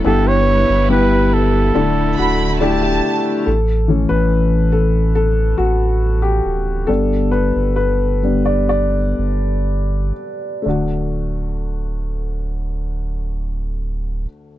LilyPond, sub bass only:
\new Staff \with { instrumentName = "Sub bass" } { \clef bass \time 4/4 \key d \major \tempo 4 = 68 g,,8. g,,4~ g,,16 d,,8 d,,4 r8 | a,,8. a,,4.~ a,,16 a,,4 d,,8 | g,,8. g,,4.~ g,,16 g,,4 r8 | d,,1 | }